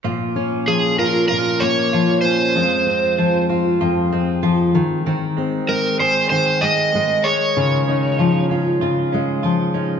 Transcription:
<<
  \new Staff \with { instrumentName = "Electric slide guitar" } { \time 4/4 \key bes \dorian \tempo 4 = 96 r4 aes'8 bes'8 bes'8 des''4 c''8~ | c''4. r2 r8 | r4 bes'8 c''8 c''8 ees''4 des''8~ | des''4. r2 r8 | }
  \new Staff \with { instrumentName = "Clean electric guitar" } { \time 4/4 \key bes \dorian <f f'>8 des'8 f'8 des'8 f'8 des'8 f'8 des'8 | <aes f'>8 c'8 f'8 c'8 f'8 c'8 f'8 ees8 | <ees c'>8 aes8 c'8 aes8 c'8 aes4 aes8 | <ees f'>8 des'8 f'8 des'8 f'8 des'8 f'8 des'8 | }
  \new Staff \with { instrumentName = "Steel-string acoustic guitar" } { \clef bass \time 4/4 \key bes \dorian bes,8 des'8 f8 f'8 bes,8 bes8 f8 des'8 | f,8 c'8 f8 f'8 f,8 aes8 f8 ees8 | ees8 c'8 aes8 aes'8 ees8 aes8 aes4 | des8 ees'8 f8 f'8 des8 aes8 f8 ees'8 | }
>>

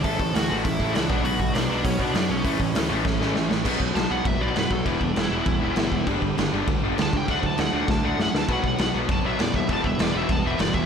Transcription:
<<
  \new Staff \with { instrumentName = "Lead electric guitar" } { \time 4/4 \key b \minor \tempo 4 = 199 <a' a''>4 <fis' fis''>4 <e' e''>4 <d' d''>4 | <fis' fis''>4 <d' d''>4 <cis' cis''>8 <d' d''>8 <d' d''>8 <cis' cis''>8~ | <cis' cis''>2.~ <cis' cis''>8 r8 | r4 a''8 fis''8 e''8 d''8 b'8 a'8 |
e'8 d'8 e'2. | r2. a''8 g''8 | fis''8 a''8 fis''8 fis''8 a''8 fis''8 fis''8 a''8 | fis''8 fis''8 fis''8 r8 a''8 e''8 d''8 e''8 |
a''8 e''8 d''8 e''8 a''8 e''8 d''8 e''8 | }
  \new Staff \with { instrumentName = "Distorted electric guitar" } { \clef bass \time 4/4 \key b \minor <a, e a>8 <a, e>8 <a, e>8 <a, e a>8 <a, e>8 <a, e a>8 <a, e>8 <b, fis b>8 | <b, fis b>8 <b, fis>8 <b, fis>8 <b, fis b>8 <b, fis>8 <b, fis b>8 <b, fis>8 <b, fis>8 | <a, e a>8 <a, e>8 <a, e>8 <a, e a>8 <a, e>8 <a, e a>8 <a, e>8 <a, e>8 | <b, fis b>8 <b, fis>8 <b, fis>8 <b, fis b>8 <b, fis>8 <b, fis b>8 <b, fis>8 <b, fis>8 |
<e g b>8 <e g>8 <e g>8 <e g b>8 <e g>8 <e g b>8 <e g>8 <e g>8 | <g, d g>8 <g, d>8 <g, d>8 <g, d g>8 <g, d>8 <g, d g>8 <g, d>8 <g, d>8 | <d fis a>8 <d fis>8 <d fis>8 <d fis a>8 <d fis>8 <d fis a>8 <d fis>8 <d fis>8 | <b, fis b>8 <b, fis>8 <b, fis>8 <b, fis b>8 <b, fis>8 <b, fis b>8 <b, fis>8 <b, fis>8 |
<e g b>8 <e g>8 <e g>8 <e g b>8 <e g>8 <e g b>8 <e g>8 <e g>8 | }
  \new Staff \with { instrumentName = "Distorted electric guitar" } { \clef bass \time 4/4 \key b \minor <a, e a>4 <a, e a>8 <a, e a>8 <a, e a>4 <a, e a>8 <b, fis b>8 | <b, fis b>4 <b, fis b>8 <b, fis b>8 <b, fis b>4 <b, fis b>8 <b, fis b>8 | <a, e a>4 <a, e a>8 <a, e a>8 <a, e a>4 <a, e a>8 <a, e a>8 | <b, fis b>2 <b, fis b>2 |
<e, b, e>2 <e, b, e>2 | <g, d g>2 <g, d g>2 | <d a d'>2 <d a d'>2 | <b, fis b>2 <b, fis b>2 |
<e, b, e>2 <e, b, e>2 | }
  \new Staff \with { instrumentName = "Distorted electric guitar" } { \clef bass \time 4/4 \key b \minor <a, e a>8 <a, e>8 <a, e>8 <a, e a>8 <a, e>8 <a, e a>8 <a, e>8 <b, fis b>8 | <b, fis b>8 <b, fis>8 <b, fis>8 <b, fis b>8 <b, fis>8 <b, fis b>8 <b, fis>8 <b, fis>8 | <a, e a>8 <a, e>8 <a, e>8 <a, e a>8 <a, e>8 <a, e a>8 <a, e>8 <a, e>8 | <b, fis b>8 <b, fis>8 <b, fis>8 <b, fis b>8 <b, fis>8 <b, fis b>8 <b, fis>8 <b, fis>8 |
<e, b, e>8 <e, b,>8 <e, b,>8 <e, b, e>8 <e, b,>8 <e, b, e>8 <e, b,>8 <e, b,>8 | <g, d g>8 <g, d>8 <g, d>8 <g, d g>8 <g, d>8 <g, d g>8 <g, d>8 <g, d>8 | <d a d'>8 <d a>8 <d a>8 <d a d'>8 <d a>8 <d a d'>8 <d a>8 <d a>8 | <b, fis b>8 <b, fis>8 <b, fis>8 <b, fis b>8 <b, fis>8 <b, fis b>8 <b, fis>8 <b, fis>8 |
<e, b, e>8 <e, b,>8 <e, b,>8 <e, b, e>8 <e, b,>8 <e, b, e>8 <e, b,>8 <e, b,>8 | }
  \new Staff \with { instrumentName = "Picked electric bass" } { \clef bass \time 4/4 \key b \minor a,,8 a,,8 d,8 a,,8 a,,8 a,,8 cis,8 b,,8 | b,,8 b,,8 b,,8 b,,8 b,,8 b,,8 fis,8 b,,8 | a,,8 a,,8 d,8 a,,8 a,,8 a,,8 a,,8 a,,8 | b,,8 b,,8 b,,8 b,,8 fis,,8 b,,8 fis,8 b,,8 |
e,,8 e,,8 e,,8 e,,8 e,,8 e,,8 g,,8 e,,8 | g,,8 g,,8 g,,8 g,,8 d,8 g,,8 d,8 cis,8 | d,8 d,8 d,8 d,8 d,8 d,8 fis,8 d,8 | b,,8 b,,8 b,,8 b,,8 fis,,8 b,,8 fis,8 dis,8 |
e,,8 e,,8 e,,8 e,,8 e,,8 e,,8 g,,8 e,,8 | }
  \new DrumStaff \with { instrumentName = "Drums" } \drummode { \time 4/4 <hho bd>8 bd8 <hho sn>4 <hho bd>8 bd8 <hho sn>8 bd8 | hho8 bd8 <hho sn>4 <hho bd>8 bd8 <hho sn>4 | <hho bd>8 bd8 <hho sn>4 <bd sn>8 sn8 sn8 sn8 | <cymc bd>8 bd8 <cymc sn>4 <cymc bd>4 <cymc sn>8 bd8 |
<cymc bd>8 bd8 <cymc sn>4 <cymc bd>4 <cymc sn>8 bd8 | <cymc bd>8 bd8 <cymc sn>4 <cymc bd>4 <cymc sn>8 bd8 | <cymc bd>8 bd8 <cymc sn>4 <bd sn>4 sn8 sn8 | <cymc bd>8 bd8 <cymc sn>4 <cymc bd>4 <cymc sn>8 bd8 |
<cymc bd>8 bd8 <cymc sn>4 <cymc bd>4 <cymc sn>8 bd8 | }
>>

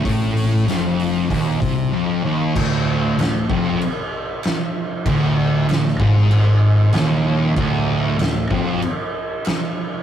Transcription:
<<
  \new Staff \with { instrumentName = "Distorted electric guitar" } { \clef bass \time 4/4 \key c \mixolydian \tempo 4 = 96 a,4 f,4 ees,8 c8 f,8 ees,8 | d,4 d,8 f,8 r2 | d,4 d,8 gis,4. ees,4 | d,4 d,8 f,8 r2 | }
  \new Staff \with { instrumentName = "Fingered electric bass" } { \clef bass \time 4/4 \key c \mixolydian a,,4 f,,4 ees,,8 c,8 r4 | d,,4 d,,8 f,,8 r2 | d,,4 d,,8 gis,,4. ees,,4 | d,,4 d,,8 f,,8 r2 | }
  \new DrumStaff \with { instrumentName = "Drums" } \drummode { \time 4/4 <hho bd>8 hho8 <hho sn>8 hho8 <hho bd>8 <hho bd>8 r4 | <cymc bd>4 <cymc sn>8 bd8 cymc4 <cymc sn>4 | <cymc bd>4 <cymc sn>16 sn16 bd8 cymc4 <cymc sn>4 | <cymc bd>4 <cymc sn>8 bd8 cymc4 <cymc sn>4 | }
>>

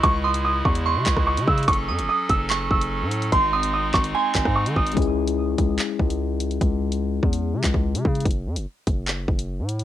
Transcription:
<<
  \new Staff \with { instrumentName = "Grand piano" } { \time 4/4 \key cis \minor \tempo 4 = 146 cis'''8 dis'''8 dis'''8 cis'''8 bis''4 cis'''8 e'''8 | cis'''8 dis'''8 dis'''8 e'''4 e'''4. | bis''8 dis'''8 dis'''8 cis'''8 bis''4 cis'''8 dis'''8 | r1 |
r1 | r1 | }
  \new Staff \with { instrumentName = "Synth bell" } { \time 4/4 \key cis \minor r8 bis''8 r4 cis'''2 | r8 dis'''8 r4 cis'''2 | r8 bis''8 r4 gis''4 r4 | r1 |
r1 | r1 | }
  \new Staff \with { instrumentName = "Tine electric piano" } { \time 4/4 \key cis \minor r1 | r1 | r1 | <gis cis' e' gis'>1 |
r1 | r1 | }
  \new Staff \with { instrumentName = "Pipe organ" } { \time 4/4 \key cis \minor <cis gis e'>1 | <fis cis' a'>1 | <gis bis dis'>1 | r1 |
r1 | r1 | }
  \new Staff \with { instrumentName = "808-style bass" } { \clef bass \time 4/4 \key cis \minor cis,4. e,8. cis16 cis,16 cis,8 cis16 cis8 | fis,,8 fis,16 fis,,16 r8 fis,,4 fis,,8. a,8. | gis,,4. gis,,8 r8 gis,,16 gis,8 dis16 gis,,8 | cis,4. cis,8 r8 cis,4. |
cis,4. e,8. cis16 cis,16 cis,8 cis16 cis8 | fis,,8 fis,16 fis,,16 r8 fis,,4 fis,,8. a,8. | }
  \new DrumStaff \with { instrumentName = "Drums" } \drummode { \time 4/4 <hh bd>8. hh16 r8 bd16 hh16 r8 <hc hh bd>16 <bd ss>16 r16 hh16 bd16 hh32 hh32 | <hh bd>32 hh8 r32 hh16 r8 <hh bd>8 hc8 bd16 hh16 r8 hh16 hh16 | <hh bd>8. hh16 r8 <hc bd>16 hh16 r8 <hc hh bd>16 <bd ss>16 r16 hh16 bd16 hh32 hh32 | <hh bd>32 hh8 r32 hh16 r8 <hh bd>8 hc8 bd16 hh16 r8 hh16 hh16 |
<hh bd>8. hh16 r8 bd16 hh16 r8 <hc hh bd>16 bd16 r16 hh16 bd16 hh32 hh32 | <hh bd>32 hh8 r32 hh16 r8 <hh bd>8 hc8 bd16 hh16 r8 hh16 hh16 | }
>>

